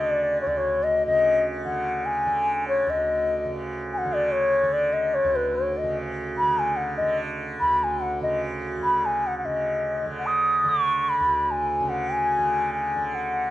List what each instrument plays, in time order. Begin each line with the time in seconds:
Already playing: tanpura D2 C#3 D3
0.00 bansuri D#5
0.10 bansuri D5
0.41 bansuri C#5
0.46 tanpura D2, bansuri D5
0.57 bansuri C#5
0.83 bansuri D#5
1.06 tanpura C#3, bansuri D#5
1.65 tanpura D3, bansuri F#5
2.05 bansuri G#5
2.26 tanpura D3
2.68 bansuri C#5
2.87 tanpura D2, bansuri D#5
3.45 tanpura C#3
3.93 bansuri G#5
3.98 bansuri F#5
4.05 tanpura D3
4.13 bansuri D5
4.32 bansuri C#5
4.63 tanpura D3
4.73 bansuri D5
4.93 bansuri D#5
5.14 bansuri C#5
5.24 tanpura D2
5.36 bansuri B4
5.55 bansuri C#5
5.77 bansuri D#5
5.83 tanpura C#3
6.38 bansuri B5
6.42 tanpura D3
6.58 bansuri G#5
6.76 bansuri F#5
6.97 tanpura D3, bansuri D#5
7.60 tanpura D2, bansuri B5
7.79 bansuri B5
7.83 bansuri G#5
8.00 bansuri F#5
8.21 tanpura C#3, bansuri D#5
8.79 tanpura D3
8.83 bansuri B5
9.05 bansuri G#5
9.27 bansuri F#5
9.38 bansuri F#5
9.45 tanpura C#3, bansuri D#5
10.05 tanpura D3
10.19 bansuri F#5
10.27 bansuri D#6
10.64 tanpura D3
10.69 bansuri C#6
11.09 bansuri B5
11.20 tanpura D2
11.51 bansuri G#5
11.80 tanpura C#3
11.89 bansuri F#5
12.10 bansuri G#5
12.38 tanpura D3
12.73 bansuri G#5
12.96 tanpura D3
13.07 bansuri G#5
13.14 bansuri F#5